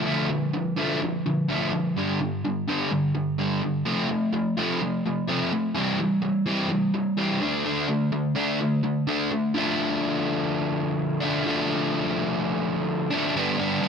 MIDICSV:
0, 0, Header, 1, 2, 480
1, 0, Start_track
1, 0, Tempo, 474684
1, 63, Time_signature, 4, 2, 24, 8
1, 14036, End_track
2, 0, Start_track
2, 0, Title_t, "Overdriven electric guitar"
2, 0, Program_c, 0, 29
2, 55, Note_on_c, 0, 50, 82
2, 62, Note_on_c, 0, 53, 85
2, 68, Note_on_c, 0, 57, 83
2, 285, Note_off_c, 0, 50, 0
2, 288, Note_off_c, 0, 53, 0
2, 291, Note_off_c, 0, 57, 0
2, 298, Note_on_c, 0, 50, 68
2, 304, Note_on_c, 0, 53, 74
2, 517, Note_off_c, 0, 50, 0
2, 520, Note_off_c, 0, 53, 0
2, 544, Note_on_c, 0, 50, 77
2, 547, Note_on_c, 0, 53, 86
2, 760, Note_off_c, 0, 50, 0
2, 761, Note_off_c, 0, 53, 0
2, 779, Note_on_c, 0, 50, 92
2, 789, Note_on_c, 0, 53, 91
2, 793, Note_on_c, 0, 57, 103
2, 1007, Note_off_c, 0, 50, 0
2, 1012, Note_off_c, 0, 53, 0
2, 1014, Note_off_c, 0, 57, 0
2, 1034, Note_on_c, 0, 50, 83
2, 1036, Note_on_c, 0, 53, 82
2, 1244, Note_off_c, 0, 50, 0
2, 1246, Note_off_c, 0, 53, 0
2, 1273, Note_on_c, 0, 50, 62
2, 1276, Note_on_c, 0, 53, 73
2, 1484, Note_off_c, 0, 50, 0
2, 1486, Note_off_c, 0, 53, 0
2, 1501, Note_on_c, 0, 50, 78
2, 1513, Note_on_c, 0, 53, 85
2, 1517, Note_on_c, 0, 57, 87
2, 1728, Note_off_c, 0, 50, 0
2, 1733, Note_off_c, 0, 53, 0
2, 1736, Note_off_c, 0, 57, 0
2, 1742, Note_on_c, 0, 50, 65
2, 1751, Note_on_c, 0, 53, 70
2, 1958, Note_off_c, 0, 50, 0
2, 1963, Note_off_c, 0, 53, 0
2, 1987, Note_on_c, 0, 43, 96
2, 1996, Note_on_c, 0, 50, 94
2, 1999, Note_on_c, 0, 55, 88
2, 2211, Note_off_c, 0, 43, 0
2, 2215, Note_off_c, 0, 50, 0
2, 2217, Note_off_c, 0, 55, 0
2, 2231, Note_on_c, 0, 43, 67
2, 2231, Note_on_c, 0, 50, 75
2, 2443, Note_off_c, 0, 43, 0
2, 2443, Note_off_c, 0, 50, 0
2, 2473, Note_on_c, 0, 43, 78
2, 2476, Note_on_c, 0, 50, 85
2, 2684, Note_off_c, 0, 43, 0
2, 2686, Note_off_c, 0, 50, 0
2, 2707, Note_on_c, 0, 43, 91
2, 2714, Note_on_c, 0, 50, 102
2, 2720, Note_on_c, 0, 55, 96
2, 2931, Note_off_c, 0, 43, 0
2, 2934, Note_off_c, 0, 50, 0
2, 2937, Note_off_c, 0, 55, 0
2, 2950, Note_on_c, 0, 43, 80
2, 2955, Note_on_c, 0, 50, 93
2, 3163, Note_off_c, 0, 43, 0
2, 3165, Note_off_c, 0, 50, 0
2, 3184, Note_on_c, 0, 43, 64
2, 3186, Note_on_c, 0, 50, 80
2, 3400, Note_off_c, 0, 43, 0
2, 3401, Note_off_c, 0, 50, 0
2, 3422, Note_on_c, 0, 43, 72
2, 3427, Note_on_c, 0, 50, 90
2, 3436, Note_on_c, 0, 55, 90
2, 3649, Note_off_c, 0, 43, 0
2, 3651, Note_off_c, 0, 50, 0
2, 3656, Note_off_c, 0, 55, 0
2, 3665, Note_on_c, 0, 43, 70
2, 3671, Note_on_c, 0, 50, 80
2, 3880, Note_off_c, 0, 43, 0
2, 3883, Note_off_c, 0, 50, 0
2, 3896, Note_on_c, 0, 53, 91
2, 3901, Note_on_c, 0, 57, 93
2, 3913, Note_on_c, 0, 60, 94
2, 4119, Note_off_c, 0, 53, 0
2, 4128, Note_off_c, 0, 57, 0
2, 4131, Note_on_c, 0, 53, 65
2, 4134, Note_off_c, 0, 60, 0
2, 4139, Note_on_c, 0, 57, 73
2, 4353, Note_off_c, 0, 53, 0
2, 4357, Note_off_c, 0, 57, 0
2, 4378, Note_on_c, 0, 53, 75
2, 4383, Note_on_c, 0, 57, 83
2, 4597, Note_off_c, 0, 53, 0
2, 4600, Note_off_c, 0, 57, 0
2, 4621, Note_on_c, 0, 53, 100
2, 4628, Note_on_c, 0, 57, 101
2, 4633, Note_on_c, 0, 60, 90
2, 4848, Note_off_c, 0, 53, 0
2, 4852, Note_off_c, 0, 57, 0
2, 4854, Note_off_c, 0, 60, 0
2, 4870, Note_on_c, 0, 53, 73
2, 4877, Note_on_c, 0, 57, 81
2, 5083, Note_off_c, 0, 53, 0
2, 5087, Note_off_c, 0, 57, 0
2, 5113, Note_on_c, 0, 53, 74
2, 5119, Note_on_c, 0, 57, 77
2, 5325, Note_off_c, 0, 53, 0
2, 5328, Note_off_c, 0, 57, 0
2, 5335, Note_on_c, 0, 53, 89
2, 5344, Note_on_c, 0, 57, 90
2, 5348, Note_on_c, 0, 60, 100
2, 5565, Note_off_c, 0, 53, 0
2, 5570, Note_off_c, 0, 57, 0
2, 5572, Note_off_c, 0, 60, 0
2, 5579, Note_on_c, 0, 53, 62
2, 5586, Note_on_c, 0, 57, 80
2, 5798, Note_off_c, 0, 53, 0
2, 5801, Note_off_c, 0, 57, 0
2, 5810, Note_on_c, 0, 52, 80
2, 5820, Note_on_c, 0, 55, 94
2, 5826, Note_on_c, 0, 60, 98
2, 6043, Note_off_c, 0, 52, 0
2, 6048, Note_off_c, 0, 55, 0
2, 6051, Note_off_c, 0, 60, 0
2, 6063, Note_on_c, 0, 52, 65
2, 6067, Note_on_c, 0, 55, 80
2, 6280, Note_off_c, 0, 52, 0
2, 6282, Note_off_c, 0, 55, 0
2, 6290, Note_on_c, 0, 52, 81
2, 6292, Note_on_c, 0, 55, 84
2, 6513, Note_off_c, 0, 52, 0
2, 6514, Note_off_c, 0, 55, 0
2, 6531, Note_on_c, 0, 52, 91
2, 6538, Note_on_c, 0, 55, 101
2, 6545, Note_on_c, 0, 60, 115
2, 6758, Note_off_c, 0, 52, 0
2, 6767, Note_off_c, 0, 55, 0
2, 6770, Note_on_c, 0, 52, 77
2, 6771, Note_off_c, 0, 60, 0
2, 6777, Note_on_c, 0, 55, 83
2, 6994, Note_off_c, 0, 52, 0
2, 6997, Note_off_c, 0, 55, 0
2, 7015, Note_on_c, 0, 52, 67
2, 7015, Note_on_c, 0, 55, 85
2, 7236, Note_off_c, 0, 52, 0
2, 7236, Note_off_c, 0, 55, 0
2, 7251, Note_on_c, 0, 52, 88
2, 7256, Note_on_c, 0, 55, 80
2, 7264, Note_on_c, 0, 60, 97
2, 7483, Note_off_c, 0, 52, 0
2, 7486, Note_off_c, 0, 55, 0
2, 7490, Note_off_c, 0, 60, 0
2, 7491, Note_on_c, 0, 50, 85
2, 7499, Note_on_c, 0, 57, 93
2, 7507, Note_on_c, 0, 62, 80
2, 7718, Note_off_c, 0, 50, 0
2, 7728, Note_off_c, 0, 57, 0
2, 7730, Note_on_c, 0, 50, 88
2, 7732, Note_off_c, 0, 62, 0
2, 7742, Note_on_c, 0, 57, 96
2, 7746, Note_on_c, 0, 62, 102
2, 7963, Note_off_c, 0, 50, 0
2, 7964, Note_off_c, 0, 57, 0
2, 7971, Note_off_c, 0, 62, 0
2, 7974, Note_on_c, 0, 50, 71
2, 7976, Note_on_c, 0, 57, 81
2, 8195, Note_off_c, 0, 50, 0
2, 8196, Note_off_c, 0, 57, 0
2, 8214, Note_on_c, 0, 50, 79
2, 8215, Note_on_c, 0, 57, 89
2, 8435, Note_off_c, 0, 50, 0
2, 8436, Note_off_c, 0, 57, 0
2, 8448, Note_on_c, 0, 50, 97
2, 8458, Note_on_c, 0, 57, 102
2, 8462, Note_on_c, 0, 62, 109
2, 8682, Note_off_c, 0, 50, 0
2, 8687, Note_off_c, 0, 57, 0
2, 8689, Note_off_c, 0, 62, 0
2, 8706, Note_on_c, 0, 50, 83
2, 8711, Note_on_c, 0, 57, 86
2, 8922, Note_off_c, 0, 50, 0
2, 8924, Note_off_c, 0, 57, 0
2, 8936, Note_on_c, 0, 50, 75
2, 8941, Note_on_c, 0, 57, 78
2, 9156, Note_off_c, 0, 50, 0
2, 9159, Note_off_c, 0, 57, 0
2, 9174, Note_on_c, 0, 50, 93
2, 9188, Note_on_c, 0, 57, 89
2, 9188, Note_on_c, 0, 62, 92
2, 9405, Note_off_c, 0, 50, 0
2, 9408, Note_off_c, 0, 57, 0
2, 9412, Note_off_c, 0, 62, 0
2, 9420, Note_on_c, 0, 50, 64
2, 9420, Note_on_c, 0, 57, 75
2, 9638, Note_off_c, 0, 50, 0
2, 9638, Note_off_c, 0, 57, 0
2, 9652, Note_on_c, 0, 50, 91
2, 9665, Note_on_c, 0, 53, 94
2, 9682, Note_on_c, 0, 57, 83
2, 9692, Note_on_c, 0, 62, 93
2, 11323, Note_off_c, 0, 50, 0
2, 11327, Note_off_c, 0, 62, 0
2, 11329, Note_off_c, 0, 53, 0
2, 11331, Note_on_c, 0, 62, 72
2, 11333, Note_off_c, 0, 57, 0
2, 11345, Note_on_c, 0, 57, 73
2, 11361, Note_on_c, 0, 53, 60
2, 11370, Note_on_c, 0, 50, 70
2, 11553, Note_off_c, 0, 50, 0
2, 11566, Note_on_c, 0, 50, 83
2, 11570, Note_off_c, 0, 57, 0
2, 11574, Note_off_c, 0, 53, 0
2, 11587, Note_on_c, 0, 53, 84
2, 11595, Note_on_c, 0, 57, 96
2, 11602, Note_off_c, 0, 62, 0
2, 11606, Note_on_c, 0, 62, 91
2, 13237, Note_off_c, 0, 50, 0
2, 13239, Note_off_c, 0, 62, 0
2, 13248, Note_off_c, 0, 53, 0
2, 13251, Note_on_c, 0, 62, 84
2, 13252, Note_off_c, 0, 57, 0
2, 13269, Note_on_c, 0, 57, 75
2, 13278, Note_on_c, 0, 53, 70
2, 13294, Note_on_c, 0, 50, 64
2, 13481, Note_off_c, 0, 62, 0
2, 13490, Note_off_c, 0, 57, 0
2, 13494, Note_off_c, 0, 53, 0
2, 13496, Note_off_c, 0, 50, 0
2, 13497, Note_on_c, 0, 43, 86
2, 13508, Note_on_c, 0, 50, 101
2, 13509, Note_on_c, 0, 55, 99
2, 13516, Note_on_c, 0, 62, 99
2, 13519, Note_on_c, 0, 59, 103
2, 13720, Note_off_c, 0, 43, 0
2, 13724, Note_off_c, 0, 50, 0
2, 13729, Note_off_c, 0, 55, 0
2, 13732, Note_on_c, 0, 43, 87
2, 13735, Note_off_c, 0, 59, 0
2, 13736, Note_on_c, 0, 50, 85
2, 13737, Note_off_c, 0, 62, 0
2, 13741, Note_on_c, 0, 55, 77
2, 13748, Note_on_c, 0, 59, 88
2, 13749, Note_on_c, 0, 62, 80
2, 13954, Note_off_c, 0, 43, 0
2, 13963, Note_off_c, 0, 50, 0
2, 13966, Note_on_c, 0, 43, 96
2, 13969, Note_off_c, 0, 55, 0
2, 13975, Note_off_c, 0, 59, 0
2, 13976, Note_on_c, 0, 50, 106
2, 13979, Note_off_c, 0, 62, 0
2, 13981, Note_on_c, 0, 55, 93
2, 13987, Note_on_c, 0, 59, 90
2, 13991, Note_on_c, 0, 62, 93
2, 14036, Note_off_c, 0, 43, 0
2, 14036, Note_off_c, 0, 50, 0
2, 14036, Note_off_c, 0, 55, 0
2, 14036, Note_off_c, 0, 59, 0
2, 14036, Note_off_c, 0, 62, 0
2, 14036, End_track
0, 0, End_of_file